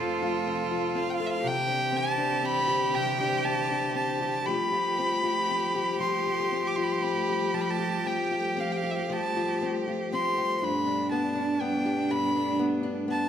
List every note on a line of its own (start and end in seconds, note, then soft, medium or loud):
0.00 1.42 F2 medium
0.00 1.42 C3 medium
0.00 1.55 F3 medium
0.00 1.42 A3 medium
0.00 0.46 C4 soft
0.00 0.21 F4 medium
0.00 1.44 F4 loud
0.00 0.98 A4 medium
0.00 1.18 A4 medium
0.22 0.70 F4 medium
0.47 0.95 C4 medium
0.71 1.54 F4 medium
0.95 1.71 C4 medium
0.95 1.11 F5 medium
1.10 1.28 F5 medium
1.10 1.15 G5 medium
1.20 1.54 A4 medium
1.26 1.32 E5 medium
1.26 1.48 F5 loud
1.44 2.92 C3 medium
1.44 4.44 D3 medium
1.44 4.44 E3 medium
1.44 4.44 C4 medium
1.44 4.43 G4 loud
1.44 1.98 G5 loud
1.68 2.16 D4 medium
1.92 2.42 C4 medium
1.96 2.47 A5 loud
2.17 3.19 D4 medium
2.43 3.45 C4 medium
2.43 2.97 B5 loud
2.68 4.21 G4 medium
2.94 4.57 C3 medium
2.94 3.47 G5 medium
3.20 3.69 D4 medium
3.45 3.95 C4 medium
3.45 3.96 A5 loud
3.70 4.57 D4 medium
3.95 4.98 C4 medium
3.95 4.48 A5 medium
4.21 4.75 G4 medium
4.46 10.59 F3 medium
4.46 5.99 F3 medium
4.46 13.29 G3 medium
4.46 13.29 A3 medium
4.46 10.65 G4 loud
4.46 5.99 B5 loud
4.72 5.22 F4 medium
4.98 5.49 C4 medium
5.24 6.25 F4 medium
5.50 6.50 C4 medium
5.75 7.28 G4 medium
6.00 7.53 F3 medium
6.00 6.69 C6 medium
6.27 6.76 F4 soft
6.52 7.01 C4 soft
6.67 6.77 D6 medium
6.76 7.78 F4 soft
6.76 6.85 C6 medium
6.84 6.94 B5 medium
6.92 7.04 C6 medium
7.03 8.04 C4 soft
7.03 7.56 B5 medium
7.29 8.83 G4 medium
7.54 9.08 F3 medium
7.54 7.62 A5 medium
7.61 7.72 B5 medium
7.70 8.09 A5 medium
7.79 8.30 F4 medium
8.06 8.55 C4 medium
8.06 8.61 G5 medium
8.31 9.35 F4 soft
8.57 9.61 C4 medium
8.57 8.73 F5 medium
8.72 8.78 G5 medium
8.77 8.92 F5 medium
8.83 10.37 G4 medium
8.91 8.97 E5 soft
8.95 9.14 F5 medium
9.10 10.73 F3 medium
9.10 9.63 A5 medium
9.36 9.86 F4 medium
9.62 10.11 C4 soft
9.88 10.73 F4 medium
10.12 10.73 C4 medium
10.12 10.58 C6 medium
10.38 11.85 G4 medium
10.58 10.66 C6 medium
10.62 12.09 G2 medium
10.62 13.29 B2 medium
10.62 13.29 D4 medium
10.62 11.10 B5 medium
10.86 11.35 D4 medium
11.11 11.60 B3 medium
11.11 11.63 A5 medium
11.35 12.36 D4 medium
11.61 12.58 B3 medium
11.61 12.13 G5 medium
11.86 13.29 G4 medium
12.11 13.29 G2 medium
12.11 12.60 B5 medium
12.36 12.83 D4 medium
12.59 13.07 B3 medium
12.83 13.29 D4 medium
13.08 13.29 B3 medium
13.08 13.29 A5 medium